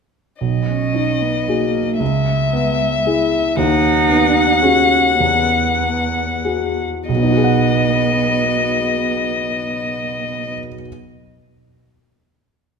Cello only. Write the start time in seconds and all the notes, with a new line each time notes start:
0.69 C#4
1.21 B3
1.48 A#3
1.99 G#3
3.56 D#4
4.62 C#4
5.19 B3
7.10 B3